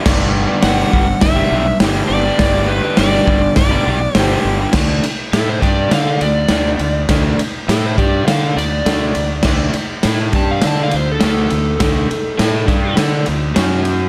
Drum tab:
CC |x-------|--------|x-------|--------|
RD |--------|--------|-xxxxxxx|xxxxxxxx|
HH |--o-o-o-|o-o-o-o-|--------|--------|
SD |o-o-o-o-|o-o-o-o-|o-o-o-o-|o-o-o-o-|
BD |o--oo---|o--oo---|o--o----|o--o----|

CC |x-------|--------|
RD |-xxxxxxx|xxxxxxxx|
HH |--------|--------|
SD |o-o-o-o-|o-o-o-o-|
BD |o--o----|o--o----|